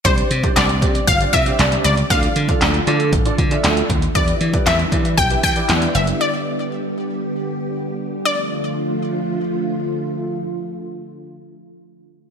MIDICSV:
0, 0, Header, 1, 6, 480
1, 0, Start_track
1, 0, Tempo, 512821
1, 49, Time_signature, 4, 2, 24, 8
1, 11514, End_track
2, 0, Start_track
2, 0, Title_t, "Synth pluck"
2, 0, Program_c, 0, 84
2, 45, Note_on_c, 0, 72, 90
2, 526, Note_on_c, 0, 74, 94
2, 541, Note_off_c, 0, 72, 0
2, 1006, Note_on_c, 0, 77, 108
2, 1022, Note_off_c, 0, 74, 0
2, 1114, Note_off_c, 0, 77, 0
2, 1244, Note_on_c, 0, 76, 104
2, 1726, Note_on_c, 0, 74, 94
2, 1741, Note_off_c, 0, 76, 0
2, 1969, Note_on_c, 0, 77, 95
2, 1974, Note_off_c, 0, 74, 0
2, 2891, Note_off_c, 0, 77, 0
2, 3886, Note_on_c, 0, 74, 93
2, 4367, Note_on_c, 0, 76, 99
2, 4382, Note_off_c, 0, 74, 0
2, 4814, Note_off_c, 0, 76, 0
2, 4844, Note_on_c, 0, 79, 113
2, 5076, Note_off_c, 0, 79, 0
2, 5088, Note_on_c, 0, 79, 108
2, 5569, Note_on_c, 0, 76, 93
2, 5583, Note_off_c, 0, 79, 0
2, 5792, Note_off_c, 0, 76, 0
2, 5810, Note_on_c, 0, 74, 83
2, 6732, Note_off_c, 0, 74, 0
2, 7726, Note_on_c, 0, 74, 86
2, 11230, Note_off_c, 0, 74, 0
2, 11514, End_track
3, 0, Start_track
3, 0, Title_t, "Grand piano"
3, 0, Program_c, 1, 0
3, 47, Note_on_c, 1, 62, 74
3, 47, Note_on_c, 1, 67, 67
3, 50, Note_on_c, 1, 72, 67
3, 50, Note_on_c, 1, 74, 79
3, 238, Note_off_c, 1, 62, 0
3, 238, Note_off_c, 1, 67, 0
3, 240, Note_off_c, 1, 72, 0
3, 240, Note_off_c, 1, 74, 0
3, 405, Note_on_c, 1, 62, 75
3, 407, Note_on_c, 1, 67, 67
3, 409, Note_on_c, 1, 72, 66
3, 410, Note_on_c, 1, 74, 82
3, 597, Note_off_c, 1, 62, 0
3, 598, Note_off_c, 1, 67, 0
3, 600, Note_off_c, 1, 72, 0
3, 600, Note_off_c, 1, 74, 0
3, 768, Note_on_c, 1, 62, 72
3, 768, Note_on_c, 1, 67, 67
3, 770, Note_on_c, 1, 72, 66
3, 772, Note_on_c, 1, 74, 82
3, 959, Note_off_c, 1, 62, 0
3, 959, Note_off_c, 1, 67, 0
3, 960, Note_off_c, 1, 72, 0
3, 961, Note_off_c, 1, 74, 0
3, 1127, Note_on_c, 1, 62, 72
3, 1130, Note_on_c, 1, 67, 64
3, 1131, Note_on_c, 1, 72, 65
3, 1132, Note_on_c, 1, 74, 78
3, 1255, Note_off_c, 1, 62, 0
3, 1256, Note_off_c, 1, 67, 0
3, 1257, Note_off_c, 1, 72, 0
3, 1257, Note_off_c, 1, 74, 0
3, 1368, Note_on_c, 1, 62, 76
3, 1370, Note_on_c, 1, 67, 66
3, 1372, Note_on_c, 1, 72, 67
3, 1374, Note_on_c, 1, 74, 85
3, 1686, Note_off_c, 1, 62, 0
3, 1687, Note_off_c, 1, 67, 0
3, 1688, Note_off_c, 1, 72, 0
3, 1689, Note_off_c, 1, 74, 0
3, 1964, Note_on_c, 1, 62, 76
3, 1966, Note_on_c, 1, 65, 72
3, 1968, Note_on_c, 1, 69, 67
3, 1969, Note_on_c, 1, 74, 87
3, 2157, Note_off_c, 1, 62, 0
3, 2158, Note_off_c, 1, 65, 0
3, 2159, Note_off_c, 1, 69, 0
3, 2159, Note_off_c, 1, 74, 0
3, 2328, Note_on_c, 1, 62, 78
3, 2328, Note_on_c, 1, 65, 71
3, 2331, Note_on_c, 1, 69, 71
3, 2333, Note_on_c, 1, 74, 84
3, 2519, Note_off_c, 1, 62, 0
3, 2519, Note_off_c, 1, 65, 0
3, 2520, Note_off_c, 1, 69, 0
3, 2521, Note_off_c, 1, 74, 0
3, 2686, Note_on_c, 1, 62, 90
3, 2688, Note_on_c, 1, 65, 83
3, 2689, Note_on_c, 1, 69, 80
3, 2691, Note_on_c, 1, 74, 98
3, 2878, Note_off_c, 1, 62, 0
3, 2879, Note_off_c, 1, 65, 0
3, 2880, Note_off_c, 1, 69, 0
3, 2880, Note_off_c, 1, 74, 0
3, 3044, Note_on_c, 1, 62, 87
3, 3046, Note_on_c, 1, 65, 80
3, 3049, Note_on_c, 1, 69, 77
3, 3049, Note_on_c, 1, 74, 94
3, 3173, Note_off_c, 1, 62, 0
3, 3174, Note_off_c, 1, 65, 0
3, 3176, Note_off_c, 1, 69, 0
3, 3176, Note_off_c, 1, 74, 0
3, 3285, Note_on_c, 1, 62, 90
3, 3286, Note_on_c, 1, 65, 79
3, 3287, Note_on_c, 1, 69, 81
3, 3289, Note_on_c, 1, 76, 99
3, 3605, Note_off_c, 1, 62, 0
3, 3605, Note_off_c, 1, 65, 0
3, 3606, Note_off_c, 1, 69, 0
3, 3606, Note_off_c, 1, 76, 0
3, 3884, Note_on_c, 1, 64, 75
3, 3885, Note_on_c, 1, 67, 69
3, 3887, Note_on_c, 1, 71, 70
3, 3888, Note_on_c, 1, 74, 81
3, 4077, Note_off_c, 1, 64, 0
3, 4077, Note_off_c, 1, 67, 0
3, 4078, Note_off_c, 1, 71, 0
3, 4079, Note_off_c, 1, 74, 0
3, 4242, Note_on_c, 1, 64, 76
3, 4244, Note_on_c, 1, 67, 71
3, 4245, Note_on_c, 1, 71, 71
3, 4247, Note_on_c, 1, 74, 83
3, 4436, Note_off_c, 1, 64, 0
3, 4437, Note_off_c, 1, 67, 0
3, 4438, Note_off_c, 1, 71, 0
3, 4439, Note_off_c, 1, 74, 0
3, 4602, Note_on_c, 1, 64, 75
3, 4604, Note_on_c, 1, 67, 66
3, 4606, Note_on_c, 1, 71, 70
3, 4607, Note_on_c, 1, 74, 83
3, 4796, Note_off_c, 1, 64, 0
3, 4797, Note_off_c, 1, 67, 0
3, 4798, Note_off_c, 1, 71, 0
3, 4798, Note_off_c, 1, 74, 0
3, 4962, Note_on_c, 1, 64, 75
3, 4963, Note_on_c, 1, 67, 67
3, 4966, Note_on_c, 1, 71, 66
3, 4966, Note_on_c, 1, 76, 82
3, 5092, Note_off_c, 1, 64, 0
3, 5093, Note_off_c, 1, 67, 0
3, 5094, Note_off_c, 1, 71, 0
3, 5094, Note_off_c, 1, 76, 0
3, 5201, Note_on_c, 1, 64, 79
3, 5203, Note_on_c, 1, 67, 70
3, 5205, Note_on_c, 1, 71, 68
3, 5207, Note_on_c, 1, 74, 86
3, 5523, Note_off_c, 1, 64, 0
3, 5523, Note_off_c, 1, 67, 0
3, 5525, Note_off_c, 1, 71, 0
3, 5526, Note_off_c, 1, 74, 0
3, 11514, End_track
4, 0, Start_track
4, 0, Title_t, "String machine"
4, 0, Program_c, 2, 50
4, 48, Note_on_c, 2, 55, 73
4, 48, Note_on_c, 2, 60, 69
4, 49, Note_on_c, 2, 50, 80
4, 50, Note_on_c, 2, 67, 88
4, 1949, Note_off_c, 2, 55, 0
4, 1949, Note_off_c, 2, 60, 0
4, 1950, Note_off_c, 2, 67, 0
4, 1968, Note_on_c, 2, 57, 70
4, 1968, Note_on_c, 2, 65, 86
4, 1970, Note_on_c, 2, 53, 72
4, 3869, Note_off_c, 2, 57, 0
4, 3869, Note_off_c, 2, 65, 0
4, 3870, Note_off_c, 2, 53, 0
4, 3886, Note_on_c, 2, 55, 75
4, 3887, Note_on_c, 2, 59, 74
4, 3887, Note_on_c, 2, 64, 91
4, 5789, Note_off_c, 2, 64, 0
4, 5806, Note_on_c, 2, 67, 90
4, 7690, Note_off_c, 2, 55, 0
4, 7690, Note_off_c, 2, 59, 0
4, 7691, Note_off_c, 2, 50, 0
4, 7708, Note_off_c, 2, 67, 0
4, 7728, Note_on_c, 2, 50, 80
4, 7729, Note_on_c, 2, 53, 75
4, 7729, Note_on_c, 2, 57, 74
4, 7729, Note_on_c, 2, 65, 88
4, 11232, Note_off_c, 2, 50, 0
4, 11233, Note_off_c, 2, 53, 0
4, 11233, Note_off_c, 2, 57, 0
4, 11233, Note_off_c, 2, 65, 0
4, 11514, End_track
5, 0, Start_track
5, 0, Title_t, "Slap bass"
5, 0, Program_c, 3, 36
5, 48, Note_on_c, 3, 36, 97
5, 204, Note_off_c, 3, 36, 0
5, 287, Note_on_c, 3, 48, 100
5, 443, Note_off_c, 3, 48, 0
5, 529, Note_on_c, 3, 36, 92
5, 767, Note_on_c, 3, 48, 92
5, 781, Note_off_c, 3, 36, 0
5, 924, Note_off_c, 3, 48, 0
5, 1008, Note_on_c, 3, 31, 90
5, 1164, Note_off_c, 3, 31, 0
5, 1250, Note_on_c, 3, 48, 103
5, 1406, Note_off_c, 3, 48, 0
5, 1489, Note_on_c, 3, 36, 92
5, 1645, Note_off_c, 3, 36, 0
5, 1729, Note_on_c, 3, 37, 90
5, 1885, Note_off_c, 3, 37, 0
5, 1968, Note_on_c, 3, 38, 99
5, 2125, Note_off_c, 3, 38, 0
5, 2209, Note_on_c, 3, 50, 98
5, 2365, Note_off_c, 3, 50, 0
5, 2449, Note_on_c, 3, 38, 93
5, 2605, Note_off_c, 3, 38, 0
5, 2688, Note_on_c, 3, 50, 111
5, 2925, Note_on_c, 3, 33, 98
5, 2939, Note_off_c, 3, 50, 0
5, 3082, Note_off_c, 3, 33, 0
5, 3168, Note_on_c, 3, 50, 108
5, 3324, Note_off_c, 3, 50, 0
5, 3409, Note_on_c, 3, 38, 94
5, 3565, Note_off_c, 3, 38, 0
5, 3647, Note_on_c, 3, 39, 97
5, 3804, Note_off_c, 3, 39, 0
5, 3886, Note_on_c, 3, 40, 104
5, 4043, Note_off_c, 3, 40, 0
5, 4126, Note_on_c, 3, 52, 93
5, 4283, Note_off_c, 3, 52, 0
5, 4366, Note_on_c, 3, 40, 100
5, 4523, Note_off_c, 3, 40, 0
5, 4605, Note_on_c, 3, 52, 94
5, 4845, Note_on_c, 3, 35, 100
5, 4859, Note_off_c, 3, 52, 0
5, 5002, Note_off_c, 3, 35, 0
5, 5086, Note_on_c, 3, 52, 99
5, 5243, Note_off_c, 3, 52, 0
5, 5328, Note_on_c, 3, 40, 86
5, 5484, Note_off_c, 3, 40, 0
5, 5567, Note_on_c, 3, 30, 95
5, 5724, Note_off_c, 3, 30, 0
5, 11514, End_track
6, 0, Start_track
6, 0, Title_t, "Drums"
6, 47, Note_on_c, 9, 42, 96
6, 48, Note_on_c, 9, 36, 122
6, 140, Note_off_c, 9, 42, 0
6, 141, Note_off_c, 9, 36, 0
6, 166, Note_on_c, 9, 42, 56
6, 259, Note_off_c, 9, 42, 0
6, 288, Note_on_c, 9, 42, 83
6, 381, Note_off_c, 9, 42, 0
6, 407, Note_on_c, 9, 36, 93
6, 409, Note_on_c, 9, 42, 49
6, 501, Note_off_c, 9, 36, 0
6, 503, Note_off_c, 9, 42, 0
6, 528, Note_on_c, 9, 42, 84
6, 530, Note_on_c, 9, 39, 107
6, 535, Note_on_c, 9, 38, 85
6, 622, Note_off_c, 9, 42, 0
6, 623, Note_off_c, 9, 39, 0
6, 629, Note_off_c, 9, 38, 0
6, 648, Note_on_c, 9, 42, 45
6, 742, Note_off_c, 9, 42, 0
6, 768, Note_on_c, 9, 36, 100
6, 772, Note_on_c, 9, 42, 70
6, 861, Note_off_c, 9, 36, 0
6, 866, Note_off_c, 9, 42, 0
6, 890, Note_on_c, 9, 42, 53
6, 984, Note_off_c, 9, 42, 0
6, 1008, Note_on_c, 9, 36, 93
6, 1011, Note_on_c, 9, 42, 90
6, 1101, Note_off_c, 9, 36, 0
6, 1105, Note_off_c, 9, 42, 0
6, 1128, Note_on_c, 9, 42, 56
6, 1222, Note_off_c, 9, 42, 0
6, 1249, Note_on_c, 9, 42, 76
6, 1250, Note_on_c, 9, 36, 88
6, 1342, Note_off_c, 9, 42, 0
6, 1343, Note_off_c, 9, 36, 0
6, 1369, Note_on_c, 9, 42, 55
6, 1462, Note_off_c, 9, 42, 0
6, 1490, Note_on_c, 9, 42, 102
6, 1493, Note_on_c, 9, 39, 109
6, 1499, Note_on_c, 9, 38, 87
6, 1584, Note_off_c, 9, 42, 0
6, 1587, Note_off_c, 9, 39, 0
6, 1592, Note_off_c, 9, 38, 0
6, 1610, Note_on_c, 9, 42, 57
6, 1704, Note_off_c, 9, 42, 0
6, 1731, Note_on_c, 9, 42, 74
6, 1825, Note_off_c, 9, 42, 0
6, 1848, Note_on_c, 9, 42, 54
6, 1942, Note_off_c, 9, 42, 0
6, 1968, Note_on_c, 9, 36, 120
6, 1968, Note_on_c, 9, 42, 97
6, 2062, Note_off_c, 9, 36, 0
6, 2062, Note_off_c, 9, 42, 0
6, 2086, Note_on_c, 9, 42, 57
6, 2179, Note_off_c, 9, 42, 0
6, 2208, Note_on_c, 9, 42, 85
6, 2301, Note_off_c, 9, 42, 0
6, 2326, Note_on_c, 9, 36, 97
6, 2328, Note_on_c, 9, 42, 50
6, 2420, Note_off_c, 9, 36, 0
6, 2422, Note_off_c, 9, 42, 0
6, 2447, Note_on_c, 9, 42, 87
6, 2448, Note_on_c, 9, 39, 111
6, 2454, Note_on_c, 9, 38, 87
6, 2540, Note_off_c, 9, 42, 0
6, 2542, Note_off_c, 9, 39, 0
6, 2547, Note_off_c, 9, 38, 0
6, 2566, Note_on_c, 9, 42, 46
6, 2659, Note_off_c, 9, 42, 0
6, 2688, Note_on_c, 9, 42, 72
6, 2781, Note_off_c, 9, 42, 0
6, 2806, Note_on_c, 9, 42, 51
6, 2900, Note_off_c, 9, 42, 0
6, 2925, Note_on_c, 9, 36, 94
6, 2928, Note_on_c, 9, 42, 96
6, 3019, Note_off_c, 9, 36, 0
6, 3021, Note_off_c, 9, 42, 0
6, 3047, Note_on_c, 9, 42, 57
6, 3141, Note_off_c, 9, 42, 0
6, 3168, Note_on_c, 9, 36, 84
6, 3168, Note_on_c, 9, 42, 72
6, 3261, Note_off_c, 9, 42, 0
6, 3262, Note_off_c, 9, 36, 0
6, 3286, Note_on_c, 9, 42, 55
6, 3380, Note_off_c, 9, 42, 0
6, 3406, Note_on_c, 9, 42, 102
6, 3409, Note_on_c, 9, 39, 113
6, 3415, Note_on_c, 9, 38, 87
6, 3500, Note_off_c, 9, 42, 0
6, 3503, Note_off_c, 9, 39, 0
6, 3509, Note_off_c, 9, 38, 0
6, 3529, Note_on_c, 9, 42, 59
6, 3623, Note_off_c, 9, 42, 0
6, 3647, Note_on_c, 9, 36, 93
6, 3650, Note_on_c, 9, 42, 73
6, 3740, Note_off_c, 9, 36, 0
6, 3743, Note_off_c, 9, 42, 0
6, 3766, Note_on_c, 9, 42, 55
6, 3859, Note_off_c, 9, 42, 0
6, 3886, Note_on_c, 9, 36, 119
6, 3886, Note_on_c, 9, 42, 98
6, 3979, Note_off_c, 9, 42, 0
6, 3980, Note_off_c, 9, 36, 0
6, 4003, Note_on_c, 9, 42, 58
6, 4097, Note_off_c, 9, 42, 0
6, 4125, Note_on_c, 9, 42, 83
6, 4219, Note_off_c, 9, 42, 0
6, 4245, Note_on_c, 9, 36, 99
6, 4245, Note_on_c, 9, 42, 50
6, 4339, Note_off_c, 9, 36, 0
6, 4339, Note_off_c, 9, 42, 0
6, 4365, Note_on_c, 9, 42, 88
6, 4366, Note_on_c, 9, 39, 107
6, 4372, Note_on_c, 9, 38, 89
6, 4458, Note_off_c, 9, 42, 0
6, 4460, Note_off_c, 9, 39, 0
6, 4466, Note_off_c, 9, 38, 0
6, 4486, Note_on_c, 9, 42, 45
6, 4580, Note_off_c, 9, 42, 0
6, 4605, Note_on_c, 9, 36, 98
6, 4609, Note_on_c, 9, 42, 74
6, 4699, Note_off_c, 9, 36, 0
6, 4702, Note_off_c, 9, 42, 0
6, 4727, Note_on_c, 9, 42, 52
6, 4820, Note_off_c, 9, 42, 0
6, 4845, Note_on_c, 9, 36, 95
6, 4847, Note_on_c, 9, 42, 93
6, 4939, Note_off_c, 9, 36, 0
6, 4941, Note_off_c, 9, 42, 0
6, 4965, Note_on_c, 9, 42, 58
6, 5059, Note_off_c, 9, 42, 0
6, 5086, Note_on_c, 9, 42, 75
6, 5087, Note_on_c, 9, 36, 89
6, 5179, Note_off_c, 9, 42, 0
6, 5181, Note_off_c, 9, 36, 0
6, 5204, Note_on_c, 9, 42, 55
6, 5298, Note_off_c, 9, 42, 0
6, 5324, Note_on_c, 9, 42, 106
6, 5327, Note_on_c, 9, 39, 112
6, 5333, Note_on_c, 9, 38, 87
6, 5418, Note_off_c, 9, 42, 0
6, 5421, Note_off_c, 9, 39, 0
6, 5427, Note_off_c, 9, 38, 0
6, 5446, Note_on_c, 9, 42, 56
6, 5539, Note_off_c, 9, 42, 0
6, 5567, Note_on_c, 9, 42, 73
6, 5661, Note_off_c, 9, 42, 0
6, 5685, Note_on_c, 9, 42, 58
6, 5778, Note_off_c, 9, 42, 0
6, 11514, End_track
0, 0, End_of_file